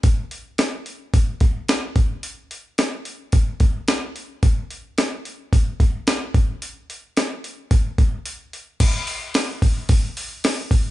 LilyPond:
\new DrumStaff \with { instrumentName = "Drums" } \drummode { \time 4/4 \tempo 4 = 109 <hho bd>8 hho8 <hho sn>8 hho8 <hho bd>8 <hho bd>8 <hho sn>8 <hho bd>8 | hho8 hho8 <hho sn>8 hho8 <hho bd>8 <hho bd>8 <hho sn>8 hho8 | <hho bd>8 hho8 <hho sn>8 hho8 <hho bd>8 <hho bd>8 <hho sn>8 <hho bd>8 | hho8 hho8 <hho sn>8 hho8 <hho bd>8 <hho bd>8 hho8 hho8 |
<cymc hho bd>8 hho8 <hho sn>8 <hho bd>8 <hho bd>8 hho8 <hho sn>8 <hho bd>8 | }